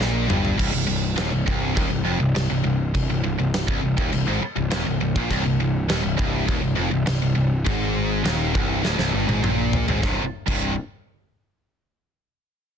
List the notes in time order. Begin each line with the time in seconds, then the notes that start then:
0.00 A#1 A#2, snare
0.28 G1 G2, mid tom
0.45 floor tom
0.57 C1 C2, kick, crash, china
0.72 C1 C2
0.86 C1 C2
1.16 D#1 D#2, snare, china
1.31 C1 C2
1.46 C1 C2, kick
1.75 D#1 D#2, kick, china
1.90 C1 C2
2.05 F1 F2
2.20 C1 C2
2.35 C1 C2, snare, china
2.49 C1 C2
2.64 C1 C2
2.94 C1 C2, kick, china
3.10 C1 C2
3.24 C1 C2
3.39 C1 C2
3.54 snare, china
3.68 C1 C2, kick
3.82 C1 C2
3.97 D#1 D#2, kick
4.12 C1 C2, china
4.27 G#1 G#2
4.42 muted distorted electric guitar stroke, muted picked electric bass stroke
4.56 C1 C2
4.70 D#1 D#2, snare, china
4.86 C1 C2
5.00 C1 C2
5.16 A#1 A#2, kick
5.30 C1 C2, kick, china
5.45 C1 C2
5.60 C1 C2
5.89 D#1 D#2, snare, china
6.03 C1 C2
6.17 C1 C2, kick
6.47 D#1 D#2, kick, china
6.62 C1 C2
6.75 F1 F2
6.91 C1 C2
7.06 C1 C2, snare, china
7.22 C1 C2
7.35 C1 C2
7.65 G#1 G#2, kick, china
8.24 D#1 D#2, snare, china
8.54 C1 C2, kick
8.83 D1 D2, snare
8.98 C1 C2, snare
9.14 G1 G2
9.28 G#1 G#2, high tom
9.43 A#1 A#2, mid tom
9.73 floor tom
9.88 G#1 G#2, floor tom
10.02 C1 C2 G2 C3, kick, snare
10.47 C1 C2 G2 C3, kick, crash